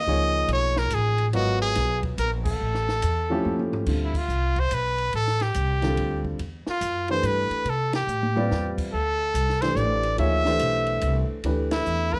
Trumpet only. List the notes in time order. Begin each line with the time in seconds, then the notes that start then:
Already playing: D#5
0.53 C#5
0.79 A#4
0.94 G#4
1.35 F#4
1.62 G#4
2.19 A#4
2.46 A4
4.05 E4
4.18 F4
4.60 C5
4.74 B4
5.16 A4
5.42 G4
6.70 F4
7.11 C5
7.26 B4
7.70 A4
7.96 G4
8.94 A4
9.62 C5
9.76 D5
10.20 E5
11.73 E4
12.14 B4